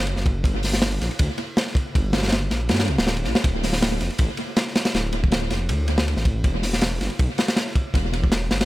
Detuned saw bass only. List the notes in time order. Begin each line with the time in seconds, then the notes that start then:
Already playing: F#1
0.17 F#1
0.44 G1
1.01 A#1
1.20 D2
1.95 G1
2.51 A#1
2.70 G2
2.89 C2
2.98 D1
3.26 A#1
3.44 D1
4.01 F1
4.19 A1
4.94 D1
5.51 F1
5.69 D2
6.17 A1
6.44 E1
7.01 G1
7.19 B1
7.94 E1
8.51 G1